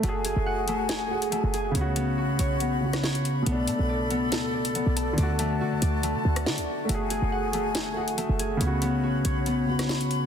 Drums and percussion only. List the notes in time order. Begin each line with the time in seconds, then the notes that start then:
0.03 closed hi-hat
0.25 closed hi-hat
0.68 closed hi-hat
0.89 snare, closed hi-hat
1.22 closed hi-hat
1.32 closed hi-hat
1.54 closed hi-hat
1.75 closed hi-hat
1.96 closed hi-hat
2.39 closed hi-hat
2.60 closed hi-hat
2.93 cross-stick, snare, closed hi-hat
3.04 snare
3.15 closed hi-hat
3.25 closed hi-hat
3.46 closed hi-hat
3.67 closed hi-hat
4.11 closed hi-hat
4.32 snare, closed hi-hat
4.65 closed hi-hat
4.75 closed hi-hat
4.97 closed hi-hat
5.18 closed hi-hat
5.39 closed hi-hat
5.82 closed hi-hat
6.03 closed hi-hat
6.36 cross-stick, closed hi-hat
6.46 snare
6.58 closed hi-hat
6.89 closed hi-hat
7.10 closed hi-hat
7.53 closed hi-hat
7.75 snare, closed hi-hat
8.08 closed hi-hat
8.18 closed hi-hat
8.39 closed hi-hat
8.61 closed hi-hat
8.82 closed hi-hat
9.25 closed hi-hat
9.46 closed hi-hat
9.79 cross-stick, snare, closed hi-hat
9.89 snare
10.01 closed hi-hat
10.11 closed hi-hat